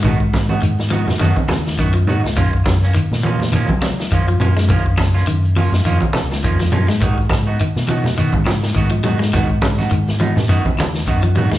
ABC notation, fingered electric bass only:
X:1
M:4/4
L:1/16
Q:"Swing 16ths" 1/4=103
K:G#dor
V:1 name="Fingered electric bass" clef=bass
G,,4 G,,3 G,, F,, z D,,2 F,,2 G,, C,, | F,,2 F,,2 z A,,4 F,3 F,,2 F,,2- | F,,4 F,,3 F,, E,, z C,,2 E,, E,, F,, G,, | G,,2 G,,2 z B,,4 G,,3 G,,2 G,,2- |
G,,4 G,,3 G,, F,, z D,,2 F,,2 G,, D,, |]